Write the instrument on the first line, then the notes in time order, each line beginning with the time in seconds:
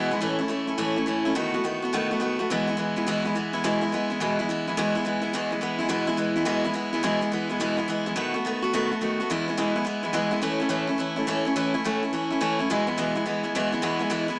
steel-string acoustic guitar
Already playing: E2 B2 E3 G#3 B3
0.11 E3 G#3 B3 E4
0.21 A2 E3 A3 C#4 E4
0.39 A3 C#4 E4
0.48 E3 A3 C#4 E4
0.67 A3 C#4 E4
0.78 A2 E3 A3 C#4 E4
0.96 A3 C#4 E4
1.06 E3 A3 C#4 E4
1.25 A3 C#4 E4
1.35 B2 D#3 A3 B3 F#4
1.54 A3 B3 F#4
1.64 D#3 A3 B3 F#4
1.82 A3 B3 F#4
1.93 B2 D#3 A3 B3 F#4
2.11 A3 B3 F#4
2.20 D#3 A3 B3 F#4
2.39 A3 B3 F#4
2.50 E2 B2 E3 G#3 B3 E4
2.67 E3 G#3 B3 E4
2.77 E3 G#3 B3 E4
2.96 E3 G#3 B3 E4
3.07 E2 B2 E3 G#3 B3 E4
3.25 E3 G#3 B3 E4
3.35 E3 G#3 B3 E4
3.53 E3 G#3 B3 E4
3.64 E2 B2 E3 G#3 B3 E4
3.81 E3 G#3 B3 E4
3.92 E3 G#3 B3 E4
4.10 E3 G#3 B3 E4
4.20 E2 B2 E3 G#3 B3 E4
4.39 E3 G#3 B3 E4
4.49 E3 G#3 B3 E4
4.67 E3 G#3 B3 E4
4.77 E2 B2 E3 G#3 B3 E4
4.95 E3 G#3 B3 E4
5.05 E3 G#3 B3 E4
5.22 E3 G#3 B3 E4
5.33 E2 B2 E3 G#3 B3 E4
5.51 E3 G#3 B3 E4
5.61 E3 G#3 B3 E4
5.79 E3 G#3 B3 E4
5.89 E2 B2 E3 G#3 B3 E4
6.07 E3 G#3 B3 E4
6.17 E3 G#3 B3 E4
6.36 E3 G#3 B3 E4
6.45 E2 B2 E3 G#3 B3 E4
6.64 E3 G#3 B3 E4
6.73 E3 G#3 B3 E4
6.93 E3 G#3 B3 E4
7.03 E2 B2 E3 G#3 B3 E4
7.21 E3 G#3 B3 E4
7.32 E3 G#3 B3 E4
7.49 E3 G#3 B3 E4
7.60 E2 B2 E3 G#3 B3 E4
7.77 E3 G#3 B3 E4
7.88 E3 G#3 B3 E4
8.06 E3 G#3 B3 E4
8.16 B2 D#3 A3 B3 F#4
8.34 A3 B3 F#4
8.45 D#3 A3 B3 F#4
8.62 A3 B3 F#4
8.73 B2 D#3 A3 B3 F#4
8.92 A3 B3 F#4
9.01 D#3 A3 B3 F#4
9.20 A3 B3 F#4
9.30 E2 B2 E3 G#3 B3 E4
9.48 E3 G#3 B3 E4
9.57 E2 B2 E3 G#3 B3 E4
9.76 E3 G#3 B3 E4
9.85 E3 G#3 B3 E4
10.03 E3 G#3 B3 E4
10.13 E2 B2 E3 G#3 B3 E4
10.31 E3 G#3 B3 E4
10.41 A2 E3 A3 C#4 E4
10.60 A3 C#4 E4
10.69 A2 E3 A3 C#4 E4
10.87 A3 C#4 E4
10.98 E3 A3 C#4 E4
11.16 A3 C#4 E4
11.27 A2 E3 A3 C#4 E4
11.45 A3 C#4 E4
11.56 A2 E3 A3 C#4 E4
11.74 A3 C#4 E4
11.84 A2 E3 A3 C#4 E4
12.03 A3 C#4 E4
12.13 E3 A3 C#4 E4
12.30 A3 C#4 E4
12.41 A2 E3 A3 C#4 E4
12.59 A3 C#4 E4
12.70 E2 B2 E3 G#3 B3 E4
12.87 E3 G#3 B3 E4
12.97 E2 B2 E3 G#3 B3 E4
13.15 E3 G#3 B3 E4
13.26 E3 G#3 B3 E4
13.43 E3 G#3 B3 E4
13.55 E2 B2 E3 G#3 B3 E4
13.72 E3 G#3 B3 E4
13.82 E2 B2 E3 G#3 B3 E4
13.99 E3 G#3 B3 E4
14.10 E2 B2 E3 G#3 B3 E4
14.28 E3 G#3 B3 E4